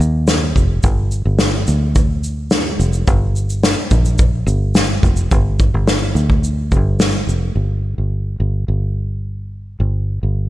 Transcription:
0.00 fingered electric bass D#2, shaker
0.27 snare, shaker
0.56 fingered electric bass F1, kick, shaker
0.83 fingered electric bass G1, kick, shaker
1.11 shaker
1.25 fingered electric bass G1
1.39 snare, shaker
1.67 fingered electric bass D2, shaker
1.95 kick, shaker
2.24 shaker
2.51 snare, shaker
2.79 fingered electric bass F1, shaker
2.93 shaker
3.07 fingered electric bass G1, kick, shaker
3.36 shaker
3.49 shaker
3.63 snare, shaker
3.91 fingered electric bass A#1, kick, shaker
4.05 shaker
4.18 kick, shaker
4.46 fingered electric bass G1, shaker
4.75 snare, shaker
5.03 fingered electric bass F1, kick, shaker
5.16 shaker
5.31 fingered electric bass G1, kick, shaker
5.59 kick, shaker
5.74 fingered electric bass G1
5.88 snare, shaker
6.15 fingered electric bass D2, shaker
6.30 kick
6.44 shaker
6.72 fingered electric bass G1, kick, shaker
7.00 snare, shaker
7.27 fingered electric bass F1, shaker
7.55 fingered electric bass G1
7.98 fingered electric bass G1
8.40 fingered electric bass G1
8.68 fingered electric bass G1
9.80 fingered electric bass G1
10.23 fingered electric bass G1

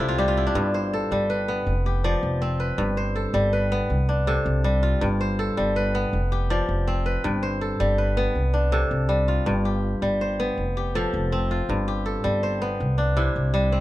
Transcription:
Already playing: kora C3 G4 A4 C5 D5
0.00 upright bass C2, kora E4
0.09 kora F4
0.18 kora G3 G4
0.28 kora F4
0.37 kora E4
0.47 kora D4
0.55 upright bass G1, kora G2
0.74 kora C5
0.93 kora A4
1.11 upright bass G1, kora G3
1.30 kora B4
1.48 kora B3
1.67 upright bass F1
1.86 kora G4
2.04 kora F3 D5
2.23 upright bass F1
2.42 kora C4
2.60 kora B4
2.78 upright bass G1, kora G2
2.97 kora C5
3.16 kora A4
3.34 upright bass G1, kora G3
3.53 kora B4
3.72 kora B3
3.90 upright bass C2
4.09 kora D4
4.27 kora C3 A4
4.46 upright bass C2
4.64 kora G3
4.83 kora F4
5.01 upright bass G1, kora G2
5.21 kora C5
5.39 kora A4
5.57 upright bass G1, kora G3
5.76 kora B4
5.95 kora B3
6.13 upright bass F1
6.32 kora G4
6.50 kora F3 D5
6.69 upright bass F1
6.87 kora C4
7.06 kora B4
7.24 upright bass G1, kora G2
7.43 kora C5
7.61 kora A4
7.80 upright bass G1, kora G3
7.98 kora B4
8.17 kora B3
8.35 upright bass C2
8.54 kora D4
8.72 kora C3 A4
8.91 upright bass C2
9.09 kora G3
9.28 kora F4
9.46 upright bass G1, kora G2
9.65 kora G4
10.02 upright bass G1, kora G3
10.21 kora C5
10.40 kora B3
10.58 upright bass F1
10.77 kora G4
10.95 kora F3 A4
11.13 upright bass F1
11.32 kora C4
11.51 kora F4
11.69 upright bass G1, kora G2
11.88 kora G4
12.06 kora A4
12.24 upright bass G1, kora G3
12.43 kora C5
12.62 kora B3
12.80 upright bass C2
12.98 kora D4
13.17 kora C3 E4
13.36 upright bass C2
13.54 kora G3
13.72 kora C4

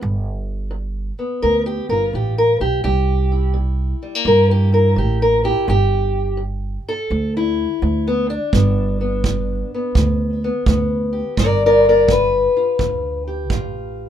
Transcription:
0.01 upright bass G1, steel-string acoustic guitar G2
0.71 steel-string acoustic guitar G2
1.19 steel-string acoustic guitar B3
1.42 upright bass D2, steel-string acoustic guitar G2 A#4
1.66 steel-string acoustic guitar G4
1.89 upright bass G1, steel-string acoustic guitar F4 A#4
2.13 upright bass A1, steel-string acoustic guitar G2 G4
2.38 steel-string acoustic guitar A#4
2.60 upright bass B1, steel-string acoustic guitar G4
2.84 upright bass C2, steel-string acoustic guitar C3 G4
3.32 steel-string acoustic guitar E4
3.54 steel-string acoustic guitar C3
4.03 steel-string acoustic guitar G3
4.15 steel-string acoustic guitar A#3
4.25 upright bass G2, steel-string acoustic guitar C3 A#4
4.51 steel-string acoustic guitar G4
4.72 steel-string acoustic guitar E4 A#4
4.96 upright bass A1, steel-string acoustic guitar C3 G4
5.22 steel-string acoustic guitar A#4
5.44 steel-string acoustic guitar E4 G4
5.67 upright bass G1, steel-string acoustic guitar G2 G4
6.37 steel-string acoustic guitar G2
6.88 steel-string acoustic guitar A4
7.11 upright bass D2, steel-string acoustic guitar G2
7.37 steel-string acoustic guitar E4
7.82 upright bass D2, steel-string acoustic guitar G2
8.07 steel-string acoustic guitar B3
8.30 steel-string acoustic guitar D4
8.53 upright bass G1, steel-string acoustic guitar G2 B3, kick
9.01 steel-string acoustic guitar B3
9.24 steel-string acoustic guitar G2, kick
9.74 steel-string acoustic guitar B3
9.95 upright bass D2, steel-string acoustic guitar G2, kick
10.44 steel-string acoustic guitar B3
10.66 upright bass D2, steel-string acoustic guitar G2 B3, kick
11.13 steel-string acoustic guitar G4
11.37 upright bass G1, steel-string acoustic guitar G3 A#4 D5, kick
11.66 steel-string acoustic guitar A#4 D5
11.85 steel-string acoustic guitar F4
11.89 steel-string acoustic guitar A#4 D5
12.07 steel-string acoustic guitar G3 B4, kick
12.57 steel-string acoustic guitar F4
12.79 upright bass D2, steel-string acoustic guitar G3, kick
13.28 steel-string acoustic guitar G4
13.50 upright bass A1, steel-string acoustic guitar G3 F4, kick

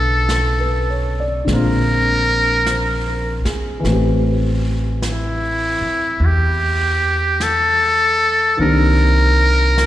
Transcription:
Already playing: upright bass B1, grand piano C#3 D3 A3 B3 F4, muted trumpet A4
0.29 grand piano A4, brush sweep, snare, hi-hat pedal
0.60 grand piano B4
0.90 grand piano C#5
1.20 grand piano D5
1.45 upright bass A#1, grand piano D3 G#3, brush sweep, snare
1.50 grand piano A#3 C4, muted trumpet A#4
1.55 grand piano F4
2.66 grand piano C5, brush sweep, snare, hi-hat pedal
3.07 grand piano A#4
3.45 grand piano G#4, muted upright bass stroke, snare
3.80 grand piano E3 A3
3.84 upright bass A1, grand piano B3 C4, brush sweep, snare
3.91 grand piano G4
5.02 brush sweep, snare, hi-hat pedal
5.08 muted trumpet E4
5.81 muted upright bass stroke
6.20 upright bass E2, brush sweep
6.25 muted trumpet G4
7.40 muted trumpet A4, brush sweep, snare, hi-hat pedal
8.57 upright bass C2, grand piano D#3 A#3 C4 D4, muted trumpet A#4, brush sweep
8.62 grand piano G4
9.78 grand piano A#4, brush sweep, snare, hi-hat pedal

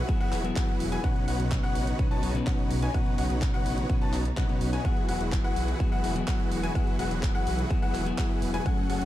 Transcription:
Already playing: string section E3 F#3 F#4, supersaw synth E4 F#4 G#4 B4 F#5, grand piano F#5
0.08 clean electric guitar F#3 B3 E4 G#4, kick, closed hi-hat
0.20 supersaw synth E4 F#4 G#4 B4 F#5, grand piano F#5, closed hi-hat
0.32 detuned saw bass E1, clap, open hi-hat
0.43 clean electric guitar F#3 B3 E4 G#4, closed hi-hat
0.56 supersaw synth E4 F#4 G#4 B4 F#5, grand piano F#5, kick, clap, closed hi-hat
0.68 closed hi-hat
0.80 detuned saw bass E1, open hi-hat
0.92 supersaw synth E4 F#4 G#4 B4 G#5, grand piano G#5, closed hi-hat
1.03 clean electric guitar B2 F#3 C#4 D#4 B4, string section C#3 B3 D#4, supersaw synth D#4 F#4 B4 C#5 F#5, grand piano F#5, kick, closed hi-hat
1.16 closed hi-hat
1.28 detuned saw bass B1, supersaw synth D#4 F#4 B4 C#5 F#5, grand piano F#5, open hi-hat
1.40 detuned saw bass B1, closed hi-hat
1.51 kick, clap, closed hi-hat
1.63 supersaw synth D#4 F#4 B4 C#5 F#5, grand piano F#5, closed hi-hat
1.75 detuned saw bass A1, open hi-hat
1.87 closed hi-hat
1.98 clean electric guitar B2 F#3 C#4 D#4 B4, kick, closed hi-hat
2.11 supersaw synth D#4 F#4 B4 C#5 A5, grand piano A5, closed hi-hat
2.23 detuned saw bass B1, open hi-hat
2.34 clean electric guitar B2 F#3 C#4 D#4 B4, closed hi-hat
2.47 supersaw synth D#4 F#4 B4 C#5 F#5, grand piano F#5, kick, clap, closed hi-hat
2.59 closed hi-hat
2.71 detuned saw bass B1, open hi-hat
2.82 supersaw synth D#4 F#4 B4 C#5 G#5, grand piano G#5, closed hi-hat
2.93 clean electric guitar B2 F#3 C#4 D#4 B4, supersaw synth D#4 F#4 B4 C#5 F#5, grand piano F#5, kick, closed hi-hat
3.06 closed hi-hat
3.18 detuned saw bass B1, supersaw synth D#4 F#4 B4 C#5 F#5, grand piano F#5, open hi-hat
3.30 detuned saw bass B1, closed hi-hat
3.42 kick, clap, closed hi-hat
3.54 supersaw synth D#4 F#4 B4 C#5 F#5, grand piano F#5, closed hi-hat
3.66 detuned saw bass A1, open hi-hat
3.78 closed hi-hat
3.89 clean electric guitar B2 F#3 C#4 D#4 B4, kick, closed hi-hat
4.01 supersaw synth D#4 F#4 B4 C#5 A5, grand piano A5, closed hi-hat
4.13 detuned saw bass B1, clap, open hi-hat
4.25 closed hi-hat
4.37 clean electric guitar B2 F#3 C#4 D#4 B4, supersaw synth D#4 F#4 B4 C#5 F#5, grand piano F#5, kick, clap, closed hi-hat
4.48 clean electric guitar B2 F#3 C#4 D#4 B4, closed hi-hat
4.61 detuned saw bass B1, open hi-hat
4.73 supersaw synth D#4 F#4 B4 C#5 G#5, grand piano G#5, closed hi-hat
4.84 string section E3 G#3 F#4, clean electric guitar F#3 B3 E4 G#4, supersaw synth E4 G#4 B4, grand piano F#5, kick, closed hi-hat
4.97 closed hi-hat
5.09 detuned saw bass E1, supersaw synth E4 F#4 G#4 B4 F#5, grand piano F#5, open hi-hat
5.21 detuned saw bass E1, closed hi-hat
5.32 kick, clap, closed hi-hat
5.44 supersaw synth E4 F#4 G#4 B4 F#5, grand piano F#5, closed hi-hat
5.56 detuned saw bass B1, open hi-hat
5.68 closed hi-hat
5.79 clean electric guitar F#3 B3 E4 G#4, kick, closed hi-hat
5.92 supersaw synth E4 F#4 G#4 B4 F#5, grand piano F#5, closed hi-hat
6.04 detuned saw bass E1, open hi-hat
6.15 clean electric guitar F#3 B3 E4 G#4, closed hi-hat
6.28 supersaw synth E4 F#4 G#4 B4 F#5, grand piano F#5, kick, clap, closed hi-hat
6.40 closed hi-hat
6.51 detuned saw bass E1, open hi-hat
6.63 supersaw synth E4 F#4 G#4 B4 G#5, grand piano G#5, closed hi-hat
6.74 clean electric guitar F#3 B3 E4 G#4, supersaw synth E4 F#4 G#4 B4 F#5, grand piano F#5, kick, closed hi-hat
6.87 closed hi-hat
6.99 detuned saw bass E1, supersaw synth E4 F#4 G#4 B4 F#5, grand piano F#5, open hi-hat
7.11 detuned saw bass E1, closed hi-hat
7.23 kick, clap, closed hi-hat
7.35 supersaw synth E4 F#4 G#4 B4 F#5, grand piano F#5, closed hi-hat
7.47 detuned saw bass B1, open hi-hat
7.59 closed hi-hat
7.70 clean electric guitar F#3 B3 E4 G#4, kick, closed hi-hat
7.82 supersaw synth E4 F#4 G#4 B4 F#5, grand piano F#5, closed hi-hat
7.94 detuned saw bass E1, clap, open hi-hat
8.05 clean electric guitar F#3 B3 E4 G#4, closed hi-hat
8.18 supersaw synth E4 F#4 G#4 B4 F#5, grand piano F#5, kick, clap, closed hi-hat
8.30 closed hi-hat
8.42 detuned saw bass E1, open hi-hat
8.54 supersaw synth E4 F#4 G#4 B4 G#5, grand piano G#5, closed hi-hat
8.65 clean electric guitar F#3 A3 C#4 G#5, string section F#3 A3 G#5, supersaw synth C#4 F#4 G#4 A4 F#5, grand piano F#5, kick, closed hi-hat
8.78 closed hi-hat
8.90 detuned saw bass F#1, supersaw synth C#4 F#4 G#4 A4 F#5, grand piano F#5, open hi-hat
9.01 detuned saw bass F#1, closed hi-hat

